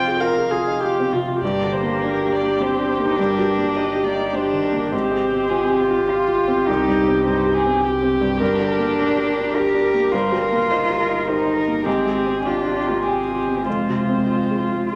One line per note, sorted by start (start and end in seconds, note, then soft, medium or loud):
0.00 1.41 F1 medium
0.00 1.38 F2 medium
0.00 1.11 C4 medium
0.00 0.13 F4 medium
0.00 0.22 F4 soft
0.00 0.14 C5 soft
0.00 0.21 G5 medium
0.07 0.30 G#4 soft
0.19 0.45 F4 soft
0.19 0.52 A#4 medium
0.19 1.11 F5 medium
0.38 0.61 G#4 soft
0.51 0.75 F4 soft
0.51 0.82 G#4 medium
0.68 0.82 D#4 soft
0.80 1.07 F4 soft
0.80 1.14 G4 medium
0.99 1.22 C4 soft
1.12 1.36 C3 soft
1.12 1.42 F4 medium
1.28 1.42 F4 soft
1.41 4.94 G1 medium
1.41 2.61 A#3 medium
1.41 4.90 G4 medium
1.41 1.74 D5 medium
1.45 3.16 G2 soft
1.64 1.94 D3 soft
1.72 2.04 C5 medium
1.83 2.13 A#3 soft
2.03 2.34 D4 soft
2.03 2.35 A#4 medium
2.21 2.52 G4 soft
2.33 2.64 D5 medium
2.41 2.72 D4 soft
2.59 3.03 C4 medium
2.59 2.91 G4 soft
2.59 3.18 C5 medium
2.79 3.10 D4 soft
2.98 3.18 A#3 soft
3.04 3.18 D#4 medium
3.16 4.89 G2 soft
3.16 4.04 D4 medium
3.16 3.78 A#4 medium
3.39 3.69 G3 soft
3.57 3.88 A#3 soft
3.76 4.08 D#4 soft
3.76 4.06 D#5 medium
3.96 4.27 G4 soft
4.04 4.35 A#3 medium
4.04 4.36 D5 medium
4.15 4.46 D#4 soft
4.33 4.93 D4 medium
4.33 4.66 G4 soft
4.33 4.64 C5 medium
4.53 4.85 D#3 soft
4.62 4.91 A#4 medium
4.72 4.92 A#3 soft
4.92 6.69 G#1 medium
4.92 6.63 G#2 medium
4.92 6.11 C4 medium
4.92 8.36 G4 medium
4.92 5.51 C5 medium
5.11 5.43 G#3 soft
5.32 5.63 C4 soft
5.49 5.82 F4 soft
5.49 5.81 G#4 medium
5.70 6.02 G4 soft
5.80 6.68 F4 medium
5.90 6.21 F4 soft
6.08 6.69 F4 medium
6.08 6.40 G4 soft
6.28 6.59 F4 soft
6.47 6.67 C4 soft
6.66 8.41 C2 medium
6.66 8.37 C2 medium
6.66 7.23 D#4 medium
6.66 7.23 G4 medium
6.88 7.18 G2 soft
7.08 7.37 C4 soft
7.24 7.56 G2 soft
7.24 7.52 D#4 medium
7.24 7.56 C5 medium
7.46 7.75 G4 soft
7.54 7.85 G#4 medium
7.66 7.95 C4 soft
7.83 9.56 G4 medium
7.83 8.14 G4 soft
8.02 8.33 C4 soft
8.21 8.39 G2 soft
8.40 11.88 G1 medium
8.40 10.09 G2 medium
8.40 9.57 D4 loud
8.40 8.68 A#4 medium
8.59 8.90 D3 soft
8.68 8.97 A#4 medium
8.79 9.10 A#3 soft
8.98 9.29 D4 soft
8.98 9.26 A#4 soft
9.17 9.48 G4 soft
9.27 9.54 A#4 soft
9.37 9.67 D4 soft
9.54 10.13 G4 medium
9.54 9.86 G4 soft
9.54 9.82 A#4 soft
9.54 10.15 A#4 medium
9.74 10.05 D4 soft
9.83 10.10 A#4 soft
9.94 10.13 A#3 soft
10.11 11.83 G2 medium
10.11 11.30 F4 medium
10.11 10.40 A#4 medium
10.11 10.42 C5 medium
10.32 10.63 G3 soft
10.41 10.72 A#4 medium
10.41 10.70 A#4 medium
10.52 10.82 A#3 soft
10.70 11.02 D#4 soft
10.70 10.98 A#4 soft
10.70 10.97 C5 medium
10.90 11.21 G4 soft
10.98 11.29 A#4 medium
10.98 11.27 A#4 soft
11.09 11.40 D#4 soft
11.27 11.87 D#4 medium
11.27 11.59 G4 soft
11.27 11.55 A#4 medium
11.27 11.59 C5 medium
11.47 11.78 D#4 soft
11.56 11.84 A#4 soft
11.56 11.88 A#4 medium
11.68 11.87 A#3 soft
11.85 13.67 G#1 medium
11.85 13.62 G#2 medium
11.85 12.43 C4 medium
11.85 12.14 G4 medium
11.85 12.48 G#4 medium
12.06 12.37 G#3 soft
12.14 12.44 G4 soft
12.27 12.57 C4 soft
12.44 12.92 D4 medium
12.44 13.01 F4 medium
12.44 12.77 F4 soft
12.44 12.73 G4 soft
12.66 12.97 G4 soft
12.73 13.02 G4 soft
12.87 13.03 A#3 medium
12.87 13.18 F4 soft
13.02 13.66 C4 medium
13.02 13.33 G4 soft
13.02 13.66 G#4 medium
13.08 13.39 G5 soft
13.28 13.59 F4 soft
13.34 13.64 G4 soft
13.48 13.67 C4 soft
13.65 14.95 F1 medium
13.65 14.88 G#3 medium
13.65 13.95 F4 soft
13.65 14.95 C5 soft
13.70 14.95 F2 soft
13.89 14.21 C3 soft
13.95 14.26 F4 soft
14.09 14.41 C4 soft
14.27 14.58 F4 soft
14.27 14.62 F4 soft
14.51 14.83 G#4 soft
14.58 14.89 F4 soft
14.72 14.95 F4 soft
14.88 14.95 F4 medium
14.88 14.95 F4 soft
14.92 14.95 G#4 soft